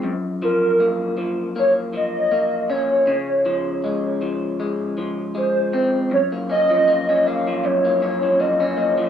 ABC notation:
X:1
M:4/4
L:1/16
Q:"Swing 16ths" 1/4=79
K:Gblyd
V:1 name="Soft synth lead"
z2 B4 z2 d2 e4 d2- | d6 z6 c4 | d2 e4 f2 d4 e4 |]
V:2 name="Clean electric guitar" clef=bass
G,,2 F,2 B,2 F,2 B,2 F,2 B,2 D2 | D,2 F,2 A,2 F,2 A,2 F,2 A,2 C2 | G,, B, D F, B, D B, F, G,, B, D F, B, D B, F, |]